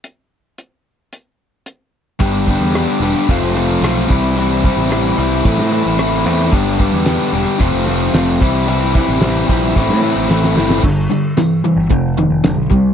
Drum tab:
CC |----------------|----------------|----------------|----------------|
HH |x---x---x---x---|x-x-x-x-x-x-x-x-|x-x-x-x-x-x-x-x-|x-x-x-x-x-x-x-x-|
TB |----------------|----------------|----------------|----x-------x---|
SD |----------------|----r-------r---|----r-------r---|----o-------o---|
BD |----------------|o-o-----o-----o-|--o-----o-------|o-o-----o-----o-|

CC |----------------|x---------------|
HH |x-x-x-x-x-x-----|--x-x-x-x-x-x-x-|
TB |----x-----------|----x-------x---|
SD |----o-------oooo|----o-------o---|
BD |--o---o-o-------|o-------o-----o-|